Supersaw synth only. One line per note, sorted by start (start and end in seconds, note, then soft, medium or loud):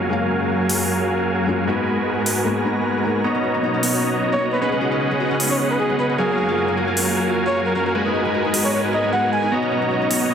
0.00 1.65 F#3 medium
0.00 1.65 F#4 medium
0.00 1.65 A#4 medium
0.00 1.65 F5 medium
0.00 1.65 G#5 medium
1.67 3.22 G#3 medium
1.67 3.22 F#4 medium
1.67 3.22 A#4 medium
1.67 3.22 B4 medium
1.67 3.22 G#5 medium
3.24 4.59 B3 medium
3.24 4.59 F#4 medium
3.24 4.59 C#5 medium
3.24 4.59 D#5 medium
3.24 4.59 A#5 medium
4.61 6.16 C#4 medium
4.61 6.16 G#4 medium
4.61 6.16 B4 medium
4.61 6.16 D#5 medium
4.61 6.16 F#5 medium
6.18 7.93 F#3 medium
6.18 7.93 F#4 medium
6.18 7.93 A#4 medium
6.18 7.93 F5 medium
6.18 7.93 G#5 medium
7.95 9.50 G#3 medium
7.95 9.50 F#4 medium
7.95 9.50 A#4 medium
7.95 9.50 B4 medium
7.95 9.50 G#5 medium
9.52 10.34 B3 medium
9.52 10.34 F#4 medium
9.52 10.34 C#5 medium
9.52 10.34 D#5 medium
9.52 10.34 A#5 medium